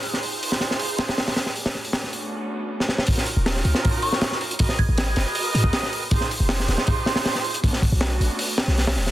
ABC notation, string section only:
X:1
M:4/4
L:1/16
Q:1/4=158
K:Ebm
V:1 name="String section"
[EFA=c]16 | [=A,=B,^C=D^F]16 | [DEFGB]3 [DEFGB]12- [DEFGB] | [GABce]3 [GABce]12- [GABce] |
[EF=GA=c]3 [EFGAc]12- [EFGAc] | [=A,=B,^C=D^F]3 [A,B,CDF]8 [A,B,CDF]4- [A,B,CDF] |]